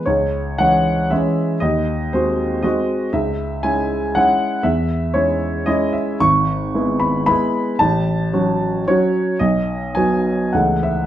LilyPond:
<<
  \new Staff \with { instrumentName = "Grand piano" } { \time 3/4 \key cis \minor \tempo 4 = 115 cis''4 fis''4 e''4 | dis''4 bis'4 dis''4 | e''4 gis''4 fis''4 | e''4 cis''4 dis''8 e''8 |
\key e \major cis'''4. b''8 b''4 | a''2 cis''4 | dis''4 gis''4 fis''8 e''8 | }
  \new Staff \with { instrumentName = "Grand piano" } { \time 3/4 \key cis \minor cis,4 <e gis cis'>4 <e gis cis'>4 | dis,4 <gis bis fis'>4 <gis bis fis'>4 | cis,4 <gis cis' e'>4 <gis cis' e'>4 | e,4 <gis cis' e'>4 <gis cis' e'>4 |
\key e \major gis,,4 <gis b e'>4 <gis b e'>4 | a,,4 <fis cis' fis'>4 <fis cis' fis'>4 | b,,4 <fis b fis'>4 <cis, e a a'>4 | }
>>